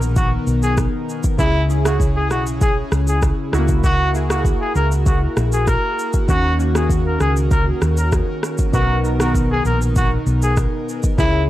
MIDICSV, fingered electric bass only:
0, 0, Header, 1, 2, 480
1, 0, Start_track
1, 0, Tempo, 612245
1, 1087, Time_signature, 4, 2, 24, 8
1, 9014, End_track
2, 0, Start_track
2, 0, Title_t, "Fingered electric bass"
2, 0, Program_c, 0, 33
2, 0, Note_on_c, 0, 34, 92
2, 285, Note_off_c, 0, 34, 0
2, 367, Note_on_c, 0, 35, 91
2, 670, Note_off_c, 0, 35, 0
2, 1088, Note_on_c, 0, 37, 117
2, 1808, Note_off_c, 0, 37, 0
2, 1808, Note_on_c, 0, 35, 90
2, 2205, Note_off_c, 0, 35, 0
2, 2288, Note_on_c, 0, 37, 105
2, 2590, Note_off_c, 0, 37, 0
2, 2768, Note_on_c, 0, 37, 100
2, 3563, Note_off_c, 0, 37, 0
2, 3728, Note_on_c, 0, 37, 102
2, 4125, Note_off_c, 0, 37, 0
2, 4208, Note_on_c, 0, 34, 92
2, 4510, Note_off_c, 0, 34, 0
2, 4929, Note_on_c, 0, 39, 110
2, 5617, Note_off_c, 0, 39, 0
2, 5648, Note_on_c, 0, 37, 94
2, 6046, Note_off_c, 0, 37, 0
2, 6128, Note_on_c, 0, 39, 97
2, 6430, Note_off_c, 0, 39, 0
2, 6849, Note_on_c, 0, 35, 105
2, 7537, Note_off_c, 0, 35, 0
2, 7567, Note_on_c, 0, 34, 94
2, 7965, Note_off_c, 0, 34, 0
2, 8047, Note_on_c, 0, 35, 100
2, 8350, Note_off_c, 0, 35, 0
2, 8768, Note_on_c, 0, 37, 118
2, 9014, Note_off_c, 0, 37, 0
2, 9014, End_track
0, 0, End_of_file